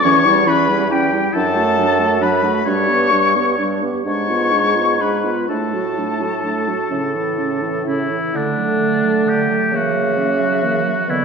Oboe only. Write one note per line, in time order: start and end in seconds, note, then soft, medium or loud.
0.05 0.50 C#5 loud
0.48 0.90 B4 loud
0.91 1.34 G4 loud
1.33 2.23 A4 loud
2.22 2.65 B4 medium
2.65 3.75 C#5 loud
4.06 5.02 C#5 loud
5.01 5.48 B4 medium
5.48 7.82 A4 medium
7.88 8.37 E4 medium
8.36 9.30 D4 medium
9.29 9.77 G4 medium
9.75 11.11 F#4 medium
11.10 11.25 E4 loud